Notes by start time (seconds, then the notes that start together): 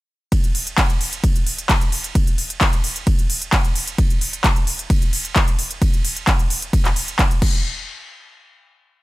0.32 kick, closed hi-hat, ride
0.44 closed hi-hat
0.55 open hi-hat
0.67 closed hi-hat
0.78 kick, clap, closed hi-hat, ride
0.90 closed hi-hat
1.01 open hi-hat
1.13 closed hi-hat
1.24 kick, closed hi-hat, ride
1.36 closed hi-hat
1.47 open hi-hat
1.58 closed hi-hat
1.69 kick, clap, closed hi-hat, ride
1.81 closed hi-hat
1.92 open hi-hat
2.04 closed hi-hat
2.15 kick, closed hi-hat, ride
2.27 closed hi-hat
2.38 open hi-hat
2.50 closed hi-hat
2.61 kick, clap, closed hi-hat, ride
2.73 closed hi-hat
2.84 open hi-hat
2.96 closed hi-hat
3.07 kick, closed hi-hat, ride
3.19 closed hi-hat
3.30 open hi-hat
3.42 closed hi-hat
3.53 kick, clap, closed hi-hat, ride
3.65 closed hi-hat
3.76 open hi-hat
3.87 closed hi-hat
3.98 kick, closed hi-hat, ride
4.10 closed hi-hat
4.21 open hi-hat
4.33 closed hi-hat
4.44 kick, clap, closed hi-hat, ride
4.56 closed hi-hat
4.67 open hi-hat
4.79 closed hi-hat
4.90 kick, closed hi-hat, ride
5.02 closed hi-hat
5.13 open hi-hat
5.25 closed hi-hat
5.36 kick, clap, closed hi-hat, ride
5.48 closed hi-hat
5.59 open hi-hat
5.71 closed hi-hat
5.82 kick, closed hi-hat, ride
5.94 closed hi-hat
6.05 open hi-hat
6.17 closed hi-hat
6.27 kick, clap, closed hi-hat, ride
6.39 closed hi-hat
6.50 open hi-hat
6.62 closed hi-hat
6.73 kick, closed hi-hat, ride
6.85 clap, closed hi-hat
6.96 open hi-hat
7.08 closed hi-hat
7.19 kick, clap, closed hi-hat, ride
7.31 closed hi-hat
7.42 kick, crash